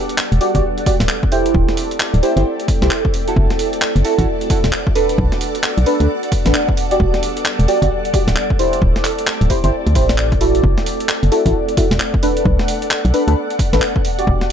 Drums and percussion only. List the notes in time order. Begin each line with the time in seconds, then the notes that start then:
0.09 closed hi-hat
0.18 clap
0.32 closed hi-hat
0.41 open hi-hat
0.55 kick, closed hi-hat
0.78 closed hi-hat
0.86 kick, open hi-hat
1.00 snare, closed hi-hat
1.09 clap
1.23 kick
1.32 open hi-hat
1.46 closed hi-hat
1.55 kick
1.69 snare, closed hi-hat
1.77 open hi-hat
1.91 closed hi-hat
2.00 clap
2.14 closed hi-hat
2.23 open hi-hat
2.37 closed hi-hat
2.60 closed hi-hat
2.68 kick, open hi-hat
2.82 snare, closed hi-hat
2.91 clap
3.05 kick
3.14 open hi-hat
3.28 closed hi-hat
3.36 kick
3.50 snare, closed hi-hat
3.59 open hi-hat
3.73 closed hi-hat
3.82 clap
3.96 closed hi-hat
4.05 open hi-hat
4.19 kick, closed hi-hat
4.41 closed hi-hat
4.50 kick, open hi-hat
4.64 snare, closed hi-hat
4.73 clap
4.87 kick
4.96 open hi-hat
5.09 closed hi-hat
5.18 kick
5.32 snare, closed hi-hat
5.41 open hi-hat
5.55 closed hi-hat
5.64 clap
5.78 closed hi-hat
5.86 open hi-hat
6.00 closed hi-hat
6.23 closed hi-hat
6.32 kick, open hi-hat
6.46 snare, closed hi-hat
6.55 clap
6.68 kick
6.77 open hi-hat
6.91 closed hi-hat
7.00 kick
7.14 snare, closed hi-hat
7.23 open hi-hat
7.37 closed hi-hat
7.46 clap
7.59 closed hi-hat
7.68 open hi-hat
7.82 kick, closed hi-hat
8.05 closed hi-hat
8.14 kick, open hi-hat
8.28 snare, closed hi-hat
8.36 clap
8.50 kick
8.59 open hi-hat
8.73 closed hi-hat
8.82 kick
8.96 snare, closed hi-hat
9.05 clap, open hi-hat
9.19 closed hi-hat
9.27 clap
9.41 closed hi-hat
9.50 kick, open hi-hat
9.64 closed hi-hat
9.87 closed hi-hat
9.95 kick, open hi-hat
10.09 snare, closed hi-hat
10.18 clap
10.32 kick, closed hi-hat
10.41 open hi-hat
10.55 closed hi-hat
10.64 kick
10.78 snare, closed hi-hat
10.86 open hi-hat
11.00 closed hi-hat
11.09 clap
11.23 closed hi-hat
11.32 open hi-hat
11.46 kick, closed hi-hat
11.69 closed hi-hat
11.77 kick, open hi-hat
11.91 snare, closed hi-hat
12.00 clap
12.14 kick
12.23 open hi-hat
12.37 closed hi-hat
12.45 kick
12.59 snare, closed hi-hat
12.68 open hi-hat
12.82 closed hi-hat
12.91 clap
13.05 closed hi-hat
13.14 open hi-hat
13.28 closed hi-hat
13.50 closed hi-hat
13.59 kick, open hi-hat
13.73 snare, closed hi-hat
13.82 clap
13.96 kick
14.05 open hi-hat
14.19 closed hi-hat
14.27 kick
14.41 snare, closed hi-hat